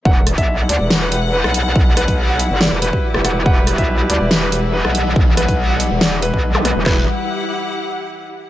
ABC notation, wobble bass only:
X:1
M:4/4
L:1/16
Q:1/4=141
K:Em
V:1 name="Wobble bass" clef=bass
E,,,3 B,,,3 D,, E,,,6 B,,,3- | B,,,3 B,,,4 G,,,2 E,,,2 z2 E,,,3 | E,,,3 B,,,3 D,, E,,,6 B,,,3- | B,,,3 B,,,4 E,,,4 B,,,4 E,,, |
E,,,2 z12 z2 |]